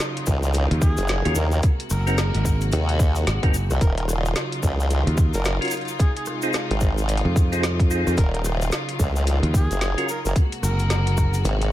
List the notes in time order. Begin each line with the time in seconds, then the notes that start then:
Already playing: C#3 F#3 D#4 F4
0.00 snare, closed hi-hat
0.17 closed hi-hat
0.26 C#2, kick, cabasa
0.43 cabasa
0.53 closed hi-hat, cabasa
0.71 D#2, closed hi-hat
0.82 G#4, kick, cabasa
0.97 F#1, closed hi-hat, cabasa
1.08 snare, closed hi-hat, cabasa
1.25 D#2 C#4 F4 F#4 A#4, closed hi-hat
1.35 D#2 A#4, cabasa
1.51 A#4, cabasa
1.63 C3 G#3 A#3 F#4, kick, closed hi-hat, cabasa
1.80 closed hi-hat
1.90 F#1 A#4, cross-stick, cabasa
2.07 C4 D#4 F#4 A#4, closed hi-hat, cabasa
2.18 snare, closed hi-hat, cabasa
2.34 G#1, closed hi-hat
2.45 kick, cabasa
2.61 closed hi-hat, cabasa
2.72 D#2, closed hi-hat, cabasa
2.89 closed hi-hat
2.99 kick, cabasa
3.15 closed hi-hat, cabasa
3.27 G#1, snare, closed hi-hat, cabasa
3.43 F#1 C4 D#4 F#4 A#4, kick, closed hi-hat
3.54 cabasa
3.70 C2, cross-stick, cabasa
3.81 D#1 C#3 F#3 D#4 F4 A#4, kick, closed hi-hat, cabasa
3.98 A#4, closed hi-hat
4.09 cross-stick, cabasa
4.25 cabasa
4.36 snare, closed hi-hat, cabasa
4.52 closed hi-hat
4.63 C#2, kick, cabasa
4.80 cabasa
4.90 closed hi-hat, cabasa
5.07 D#2, closed hi-hat
5.17 kick, cabasa
5.33 F#1 A#4, closed hi-hat, cabasa
5.44 A#4, snare, closed hi-hat, cabasa
5.61 C#4 F4 F#4 A#4, closed hi-hat
5.65 closed hi-hat
5.68 closed hi-hat
5.70 closed hi-hat, cabasa
5.77 closed hi-hat
5.81 closed hi-hat
5.85 closed hi-hat, cabasa
5.99 C3 G#3 G#4, kick, closed hi-hat, cabasa
6.17 G#4, closed hi-hat
6.26 cross-stick, cabasa
6.42 C4 D#4 F4 G#4, cabasa
6.53 snare, closed hi-hat, cabasa
6.70 G#1, closed hi-hat
6.81 kick, cabasa
6.98 cabasa
7.09 closed hi-hat, cabasa
7.17 closed hi-hat
7.25 F2
7.36 kick, cabasa
7.52 C4 D#4 F4 G#4, closed hi-hat, cabasa
7.63 snare, closed hi-hat, cabasa
7.79 kick, closed hi-hat
7.90 C4 D#4 F4 G#4, cabasa
8.07 F2, cross-stick, cabasa
8.17 D#1 C#3 F#3 A#4, kick, closed hi-hat, cabasa
8.34 A#4, closed hi-hat
8.44 cross-stick, cabasa
8.61 cabasa
8.72 snare, closed hi-hat, cabasa
8.89 closed hi-hat
8.99 C#2, kick, cabasa
9.16 cabasa
9.27 closed hi-hat, cabasa
9.43 D#2, closed hi-hat
9.54 G#4, kick, cabasa
9.71 F#1, closed hi-hat, cabasa
9.81 snare, closed hi-hat, cabasa
9.98 C#4 F4 F#4 A#4, closed hi-hat
10.09 A#4, cabasa
10.25 F#1 A#4, cabasa
10.36 C3 G#3 A#3 F#4, kick, closed hi-hat, cabasa
10.52 closed hi-hat
10.63 F#1 A#4, cross-stick, cabasa
10.79 closed hi-hat, cabasa
10.90 snare, closed hi-hat, cabasa
11.07 closed hi-hat
11.17 kick, cross-stick, cabasa
11.34 closed hi-hat, cabasa
11.45 G#1, closed hi-hat, cabasa
11.62 closed hi-hat